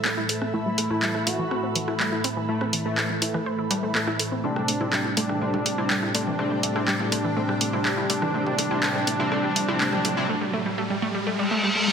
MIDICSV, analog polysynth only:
0, 0, Header, 1, 2, 480
1, 0, Start_track
1, 0, Tempo, 487805
1, 527, Time_signature, 4, 2, 24, 8
1, 11734, End_track
2, 0, Start_track
2, 0, Title_t, "Analog polysynth"
2, 0, Program_c, 0, 90
2, 0, Note_on_c, 0, 45, 74
2, 0, Note_on_c, 0, 52, 68
2, 0, Note_on_c, 0, 57, 85
2, 499, Note_off_c, 0, 45, 0
2, 499, Note_off_c, 0, 52, 0
2, 499, Note_off_c, 0, 57, 0
2, 527, Note_on_c, 0, 45, 98
2, 527, Note_on_c, 0, 52, 84
2, 527, Note_on_c, 0, 57, 100
2, 860, Note_off_c, 0, 45, 0
2, 860, Note_off_c, 0, 52, 0
2, 860, Note_off_c, 0, 57, 0
2, 889, Note_on_c, 0, 45, 90
2, 889, Note_on_c, 0, 52, 85
2, 889, Note_on_c, 0, 57, 107
2, 1219, Note_off_c, 0, 45, 0
2, 1219, Note_off_c, 0, 52, 0
2, 1219, Note_off_c, 0, 57, 0
2, 1246, Note_on_c, 0, 45, 78
2, 1246, Note_on_c, 0, 57, 82
2, 1247, Note_on_c, 0, 52, 71
2, 2419, Note_off_c, 0, 45, 0
2, 2419, Note_off_c, 0, 52, 0
2, 2419, Note_off_c, 0, 57, 0
2, 2447, Note_on_c, 0, 45, 94
2, 2447, Note_on_c, 0, 52, 85
2, 2447, Note_on_c, 0, 57, 98
2, 2780, Note_off_c, 0, 45, 0
2, 2780, Note_off_c, 0, 52, 0
2, 2780, Note_off_c, 0, 57, 0
2, 2809, Note_on_c, 0, 45, 93
2, 2809, Note_on_c, 0, 52, 90
2, 2809, Note_on_c, 0, 57, 107
2, 3139, Note_off_c, 0, 45, 0
2, 3139, Note_off_c, 0, 52, 0
2, 3139, Note_off_c, 0, 57, 0
2, 3167, Note_on_c, 0, 45, 76
2, 3167, Note_on_c, 0, 52, 69
2, 3167, Note_on_c, 0, 57, 88
2, 3624, Note_off_c, 0, 45, 0
2, 3624, Note_off_c, 0, 52, 0
2, 3624, Note_off_c, 0, 57, 0
2, 3647, Note_on_c, 0, 45, 82
2, 3647, Note_on_c, 0, 52, 78
2, 3647, Note_on_c, 0, 57, 90
2, 3740, Note_off_c, 0, 45, 0
2, 3740, Note_off_c, 0, 52, 0
2, 3740, Note_off_c, 0, 57, 0
2, 3769, Note_on_c, 0, 52, 70
2, 3769, Note_on_c, 0, 57, 86
2, 3770, Note_on_c, 0, 45, 81
2, 3859, Note_off_c, 0, 52, 0
2, 3859, Note_off_c, 0, 57, 0
2, 3860, Note_off_c, 0, 45, 0
2, 3888, Note_on_c, 0, 45, 82
2, 3888, Note_on_c, 0, 52, 70
2, 3888, Note_on_c, 0, 57, 89
2, 4340, Note_off_c, 0, 45, 0
2, 4340, Note_off_c, 0, 52, 0
2, 4340, Note_off_c, 0, 57, 0
2, 4367, Note_on_c, 0, 48, 85
2, 4367, Note_on_c, 0, 55, 83
2, 4367, Note_on_c, 0, 60, 97
2, 4700, Note_off_c, 0, 48, 0
2, 4700, Note_off_c, 0, 55, 0
2, 4700, Note_off_c, 0, 60, 0
2, 4728, Note_on_c, 0, 55, 81
2, 4728, Note_on_c, 0, 60, 93
2, 4729, Note_on_c, 0, 48, 85
2, 5059, Note_off_c, 0, 48, 0
2, 5059, Note_off_c, 0, 55, 0
2, 5059, Note_off_c, 0, 60, 0
2, 5086, Note_on_c, 0, 48, 76
2, 5086, Note_on_c, 0, 60, 80
2, 5087, Note_on_c, 0, 55, 68
2, 5308, Note_off_c, 0, 48, 0
2, 5308, Note_off_c, 0, 55, 0
2, 5308, Note_off_c, 0, 60, 0
2, 5327, Note_on_c, 0, 48, 85
2, 5327, Note_on_c, 0, 55, 80
2, 5327, Note_on_c, 0, 60, 95
2, 5660, Note_off_c, 0, 48, 0
2, 5660, Note_off_c, 0, 55, 0
2, 5660, Note_off_c, 0, 60, 0
2, 5689, Note_on_c, 0, 48, 87
2, 5689, Note_on_c, 0, 55, 76
2, 5689, Note_on_c, 0, 60, 93
2, 6019, Note_off_c, 0, 48, 0
2, 6019, Note_off_c, 0, 55, 0
2, 6019, Note_off_c, 0, 60, 0
2, 6048, Note_on_c, 0, 48, 76
2, 6048, Note_on_c, 0, 55, 64
2, 6048, Note_on_c, 0, 60, 80
2, 6269, Note_off_c, 0, 48, 0
2, 6269, Note_off_c, 0, 55, 0
2, 6269, Note_off_c, 0, 60, 0
2, 6287, Note_on_c, 0, 48, 95
2, 6287, Note_on_c, 0, 55, 86
2, 6287, Note_on_c, 0, 60, 104
2, 6620, Note_off_c, 0, 48, 0
2, 6620, Note_off_c, 0, 55, 0
2, 6620, Note_off_c, 0, 60, 0
2, 6648, Note_on_c, 0, 55, 85
2, 6648, Note_on_c, 0, 60, 97
2, 6649, Note_on_c, 0, 48, 93
2, 6979, Note_off_c, 0, 48, 0
2, 6979, Note_off_c, 0, 55, 0
2, 6979, Note_off_c, 0, 60, 0
2, 7007, Note_on_c, 0, 55, 65
2, 7007, Note_on_c, 0, 60, 81
2, 7008, Note_on_c, 0, 48, 74
2, 7229, Note_off_c, 0, 48, 0
2, 7229, Note_off_c, 0, 55, 0
2, 7229, Note_off_c, 0, 60, 0
2, 7248, Note_on_c, 0, 48, 86
2, 7248, Note_on_c, 0, 55, 84
2, 7248, Note_on_c, 0, 60, 99
2, 7580, Note_off_c, 0, 48, 0
2, 7580, Note_off_c, 0, 55, 0
2, 7580, Note_off_c, 0, 60, 0
2, 7608, Note_on_c, 0, 48, 90
2, 7608, Note_on_c, 0, 55, 85
2, 7608, Note_on_c, 0, 60, 97
2, 7939, Note_off_c, 0, 48, 0
2, 7939, Note_off_c, 0, 55, 0
2, 7939, Note_off_c, 0, 60, 0
2, 7967, Note_on_c, 0, 48, 77
2, 7967, Note_on_c, 0, 55, 69
2, 7968, Note_on_c, 0, 60, 88
2, 8189, Note_off_c, 0, 48, 0
2, 8189, Note_off_c, 0, 55, 0
2, 8189, Note_off_c, 0, 60, 0
2, 8207, Note_on_c, 0, 48, 92
2, 8207, Note_on_c, 0, 55, 86
2, 8207, Note_on_c, 0, 60, 98
2, 8540, Note_off_c, 0, 48, 0
2, 8540, Note_off_c, 0, 55, 0
2, 8540, Note_off_c, 0, 60, 0
2, 8569, Note_on_c, 0, 48, 93
2, 8569, Note_on_c, 0, 55, 85
2, 8569, Note_on_c, 0, 60, 105
2, 8669, Note_off_c, 0, 48, 0
2, 8669, Note_off_c, 0, 55, 0
2, 8669, Note_off_c, 0, 60, 0
2, 8687, Note_on_c, 0, 48, 93
2, 8687, Note_on_c, 0, 55, 88
2, 8687, Note_on_c, 0, 60, 99
2, 9020, Note_off_c, 0, 48, 0
2, 9020, Note_off_c, 0, 55, 0
2, 9020, Note_off_c, 0, 60, 0
2, 9048, Note_on_c, 0, 60, 116
2, 9049, Note_on_c, 0, 48, 99
2, 9049, Note_on_c, 0, 55, 91
2, 9148, Note_off_c, 0, 48, 0
2, 9148, Note_off_c, 0, 60, 0
2, 9149, Note_off_c, 0, 55, 0
2, 9167, Note_on_c, 0, 48, 89
2, 9167, Note_on_c, 0, 55, 85
2, 9167, Note_on_c, 0, 60, 107
2, 9500, Note_off_c, 0, 48, 0
2, 9500, Note_off_c, 0, 55, 0
2, 9500, Note_off_c, 0, 60, 0
2, 9530, Note_on_c, 0, 48, 97
2, 9530, Note_on_c, 0, 55, 87
2, 9530, Note_on_c, 0, 60, 105
2, 9629, Note_off_c, 0, 48, 0
2, 9629, Note_off_c, 0, 55, 0
2, 9629, Note_off_c, 0, 60, 0
2, 9648, Note_on_c, 0, 48, 96
2, 9648, Note_on_c, 0, 55, 88
2, 9648, Note_on_c, 0, 60, 110
2, 9980, Note_off_c, 0, 60, 0
2, 9981, Note_off_c, 0, 48, 0
2, 9981, Note_off_c, 0, 55, 0
2, 10010, Note_on_c, 0, 48, 105
2, 10010, Note_on_c, 0, 55, 99
2, 10010, Note_on_c, 0, 60, 117
2, 10109, Note_off_c, 0, 48, 0
2, 10109, Note_off_c, 0, 55, 0
2, 10109, Note_off_c, 0, 60, 0
2, 11734, End_track
0, 0, End_of_file